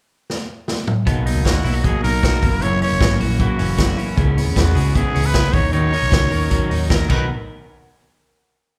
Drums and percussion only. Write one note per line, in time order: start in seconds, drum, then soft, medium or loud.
0.30 snare medium
0.68 snare medium
0.87 mid tom medium
1.07 kick loud
1.07 closed hi-hat medium
1.26 open hi-hat medium
1.45 kick loud
1.45 snare loud
1.45 closed hi-hat medium
1.65 open hi-hat medium
1.84 kick loud
1.84 closed hi-hat medium
2.04 open hi-hat medium
2.23 kick loud
2.23 snare loud
2.23 closed hi-hat medium
2.43 kick loud
2.43 open hi-hat medium
2.62 closed hi-hat medium
2.82 open hi-hat medium
3.01 kick loud
3.01 snare loud
3.01 closed hi-hat medium
3.20 open hi-hat medium
3.40 kick loud
3.40 closed hi-hat medium
3.59 open hi-hat medium
3.78 kick medium
3.78 snare loud
3.78 closed hi-hat medium
3.98 open hi-hat medium
4.18 kick loud
4.18 closed hi-hat medium
4.38 open hi-hat medium
4.56 kick loud
4.56 snare loud
4.56 closed hi-hat medium
4.76 open hi-hat medium
4.95 kick medium
4.95 closed hi-hat medium
5.15 open hi-hat medium
5.34 kick loud
5.34 snare loud
5.34 closed hi-hat medium
5.53 kick loud
5.53 open hi-hat medium
5.73 closed hi-hat medium
5.93 open hi-hat medium
6.12 kick loud
6.12 snare loud
6.12 closed hi-hat medium
6.31 open hi-hat medium
6.51 kick loud
6.51 closed hi-hat medium
6.71 open hi-hat medium
6.90 kick loud
6.90 snare loud
6.90 closed hi-hat medium
7.10 kick medium
7.10 crash medium